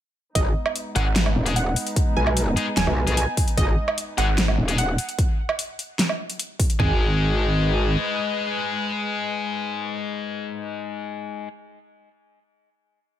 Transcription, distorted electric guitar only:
0.95 G#3 D#4 G#4
1.46 G#3 D#4 G#4
2.56 G#3 D#4 G#4
3.07 G#3 D#4 G#4
4.18 G#3 D#4 G#4
4.68 G#3 D#4 G#4
6.79 G#3 D#4 G#4

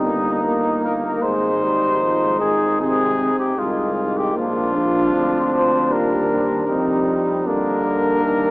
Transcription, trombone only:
Already playing: G3
0.45 A#3
1.23 G#3
1.63 G3
2.03 F3
2.42 D#3
2.80 C3
3.58 D#3
4.36 F3
5.90 G3
6.68 G3
7.45 D3
8.23 D#3

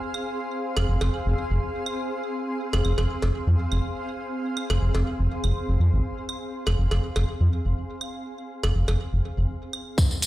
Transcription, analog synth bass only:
0.77 F1
0.88 F1
1.01 F1
1.26 F1
1.50 F1
2.73 F1
2.85 F1
2.98 F1
3.22 F1
3.47 F2
3.72 F1
4.70 F1
4.81 F1
4.95 F1
5.19 F1
5.44 F1
5.68 F1
5.80 F2
5.93 G#1
6.67 F1
6.78 F1
6.91 F1
7.16 F1
7.40 F2
7.65 F1
8.63 F1
8.75 F1
8.88 F1
9.13 F1
9.37 F1

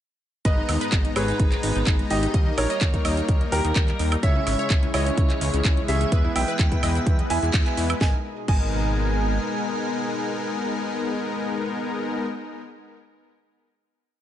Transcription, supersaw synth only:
0.45 G#2 G#3 B3 D#4 A#5
1.16 G#2 G#3 B3 D#4 A#5
2.34 G3 A#3 D#4 A#4
3.05 G3 A#3 D#4 A#4
4.23 C#3 G#3 C#4 E4 C#5
4.94 C#3 G#3 C#4 E4 C#5
6.12 G#3 B3 E4 B4
6.83 G#3 B3 E4 B4
7.43 G#3 B3 E4 G#4
7.66 G#3 B3 E4 B4
8.01 G#3 B3 D#4 A#4
8.48 G#3 B3 D#4 A#4

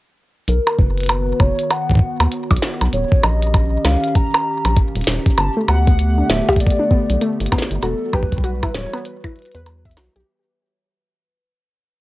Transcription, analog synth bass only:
0.48 B1
0.79 F#1
1.40 F#1
2.20 D#2
2.51 B1
2.81 B1
2.93 D#1
3.24 A#1
3.85 C#2
4.65 A#1
4.96 D#1
5.07 D#1
5.38 G1
5.68 D2
6.30 D1
7.10 B1
7.40 G1
7.71 G1
7.83 E1
8.13 B1
8.74 D1
9.55 E2
9.97 B1
10.16 B1

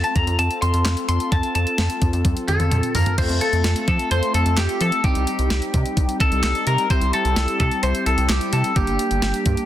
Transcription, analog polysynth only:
Already playing: C4 F4 A4
3.18 A3 C4 F4 A4
5.04 G3 C4 D#4 G4
6.90 G3 C4 E4 G4
8.76 G3 A#3 D4 G4

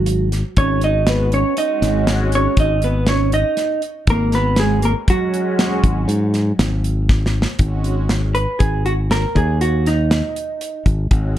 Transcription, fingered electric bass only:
Already playing: G#1
0.57 G#1
1.82 G#1
2.57 G#1
4.07 G#1
5.83 G#1
6.08 G#2
6.59 G#1
7.59 G#1
8.60 G#1
9.35 D#2
10.86 G#1
11.11 G#1

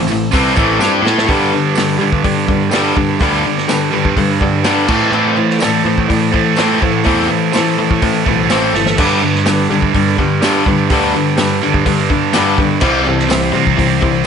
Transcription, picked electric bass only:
0.08 A1
0.33 C2
0.57 A1
0.79 G2
1.02 A2
1.29 G2
1.98 G3
2.13 G2
2.25 G2
2.48 G2
2.97 G2
3.21 D2
4.05 G2
4.16 G2
4.41 G2
4.88 A2
5.12 A2
5.85 A2
5.98 A2
6.10 A2
6.34 A2
6.82 A2
7.06 E2
7.91 A2
8.02 A2
8.26 B1
8.50 A1
8.74 G1
8.98 G2
9.70 G3
9.82 G2
9.94 G2
10.19 G2
10.67 G2
10.91 D2
11.74 G2
11.86 G2
12.10 G2
12.58 G2
12.82 C2
13.53 C3
13.67 C2
13.79 C2
14.02 C2

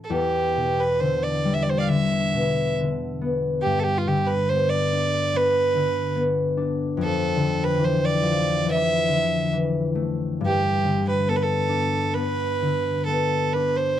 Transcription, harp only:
Already playing: A2 E3 C4 E4
0.10 E2
0.56 B2
1.00 D3
1.45 G3
1.89 D3
2.34 B2
2.79 D3
3.21 B3
3.65 G2
4.07 D3
4.51 B3
4.93 D4
5.34 B3
5.75 D3
6.16 B3
6.57 D4
6.97 F2
7.36 D3
7.79 E3
8.22 F3
8.65 E3
9.08 D3
9.53 E3
9.95 A3
10.41 G2
10.84 D3
11.26 B3
11.69 D4
12.14 B3
12.62 D3
13.08 B3
13.55 D4

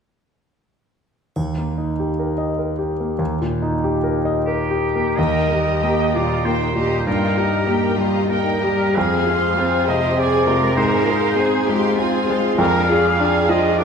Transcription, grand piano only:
1.36 D#2
1.58 A#3
1.78 D#4
2.00 G4
2.19 A#4
2.38 D#5
2.59 A#4
2.79 G4
3.00 A#3
3.19 D#2
3.41 A#2
3.62 D#4
3.84 G4
4.04 A#4
4.25 D#5
4.47 A#4
4.71 G4
4.95 A#3
5.19 D#2
5.52 G4
5.83 A#3
6.15 A#2
6.45 A#3
6.76 A#2
7.07 G2
7.37 G4
7.67 A#3
7.98 G3
8.30 A#3
8.64 G3
8.97 F2
9.27 G#4
9.59 C4
9.88 C3
10.17 C4
10.47 C3
10.77 G#2
11.08 G#4
11.39 C4
11.69 G#3
11.99 C4
12.30 G#3
12.58 F2
12.90 G#4
13.20 D4
13.49 F3
13.80 D4

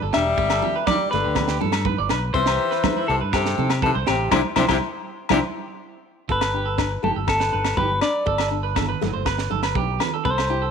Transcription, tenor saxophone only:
0.17 G3
0.90 G3
1.14 D3
2.35 E3
3.10 C3
3.35 C3
3.85 C3
4.10 C3
4.35 C3
4.59 C3
4.71 C3
5.33 C3

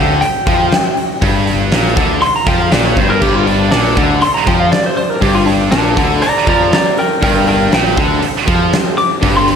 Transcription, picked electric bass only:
Already playing: D2
0.23 muted picked electric bass stroke
0.47 F2
1.22 G1
1.71 A#1
1.97 D2
2.22 muted picked electric bass stroke
2.47 F2
2.72 A#1
2.97 G1
3.22 G1
3.72 A#1
3.97 D2
4.22 muted picked electric bass stroke
4.47 F2
5.22 G1
5.72 A#1
5.97 D2
6.23 muted picked electric bass stroke
6.47 F2
7.22 G1
7.73 A#1
7.98 D2
8.23 muted picked electric bass stroke
8.48 F2
9.23 G1

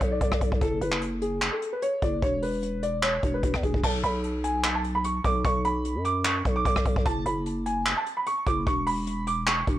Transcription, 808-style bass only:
0.01 B1
0.21 B1
0.32 B1
0.41 B1
0.52 B1
0.61 F#1
0.81 F#1
2.02 F#1
2.22 E1
3.23 E1
3.43 E1
3.54 E2
3.63 E1
3.74 E1
3.84 B1
4.04 B1
5.24 B1
5.45 B1
5.95 F#2
6.45 B1
6.65 B1
6.76 B1
6.86 B1
6.96 B1
7.06 F#1
7.26 F#1
8.47 F#1
8.67 E1
9.67 E1

